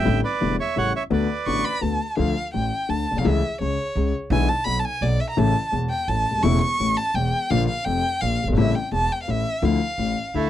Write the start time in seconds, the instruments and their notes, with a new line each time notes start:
Already playing: bandoneon E5 G5
0.01 grand piano G#1 A1 A2 D3 G3, upright bass G#1
0.05 upright bass A1, grand piano A3 E4
0.24 bandoneon B4 D5
0.41 grand piano E1 E2 D3 G3 A3 E4, upright bass E1
0.60 bandoneon C#5 E5
0.76 upright bass A1, grand piano A1 A2 C#3 G3 A3 E4, bandoneon C#5 F#5
0.96 bandoneon C#5 E5
1.10 grand piano D2 D3 A3 B3 F#4, upright bass D2, bandoneon B4 D5
1.46 upright bass A1, grand piano A1 A2 D3 A3 B3 F#4, violin C#6
1.65 violin B5
1.81 grand piano D2 D3 A3 B3 F#4, upright bass D2, violin A5
2.17 grand piano D2 D3 F3 A3 F4, upright bass D2, violin F5
2.54 grand piano A1 A2, upright bass A1, violin G5
2.89 grand piano D2 D3, upright bass D2, violin A5
3.11 grand piano A#1, upright bass A#1
3.16 upright bass B1, grand piano B1, violin F5
3.21 grand piano C2 C#2 C#3 E3, upright bass C2
3.25 upright bass C#2, grand piano A3 E4, violin E5
3.61 upright bass C#2, grand piano C#2 C#3, violin C#5
3.95 upright bass C#2, grand piano C#2 C#3
4.30 upright bass B1, grand piano B1 B2 D3 G#3 B3 E4, violin G#5
4.49 violin A5
4.64 grand piano B1 B2, upright bass B1, violin B5
4.79 violin A5
4.85 violin G#5
5.01 upright bass B1, grand piano B1 B2, violin D5
5.20 violin E5
5.29 violin A#5
5.37 grand piano A1 A2 C#3 E3 A3 E4, upright bass A1, violin A5
5.72 upright bass E1, grand piano E1 E2
5.89 violin G5
6.08 upright bass A1, grand piano A1 A2, violin A5
6.31 grand piano C#1 D1
6.40 grand piano D#1 E1 E2 C#3 E3 A3 E4, upright bass E1, violin C#6
6.62 violin C#6
6.80 upright bass A1, grand piano A1 A2
6.97 violin A5
7.14 upright bass E1, grand piano E1 E2, violin G5
7.50 upright bass A#1, grand piano A#1 A#2 D3 F3 A#3 F4, violin F5
7.68 violin F5
7.84 grand piano F1 F2, upright bass F1, violin G5
8.21 upright bass A#1, grand piano A#1 A#2, violin F5
8.43 grand piano F#1, upright bass F#1
8.48 grand piano G1, upright bass G1
8.53 grand piano G#1 C#3, upright bass G#1
8.57 upright bass A1, grand piano A1 A2 G3 A3 E4, violin E5
8.75 violin G5
8.92 upright bass E1, grand piano E1 E2, violin A5
9.12 violin G5
9.22 violin F5
9.28 upright bass A1, grand piano A1 A2, violin E5
9.62 upright bass D2, grand piano D2 D3 F3 A3 E4, violin F5
9.98 upright bass A1, grand piano A1 A2
10.34 upright bass D2, grand piano D2 D3, bandoneon A3 E4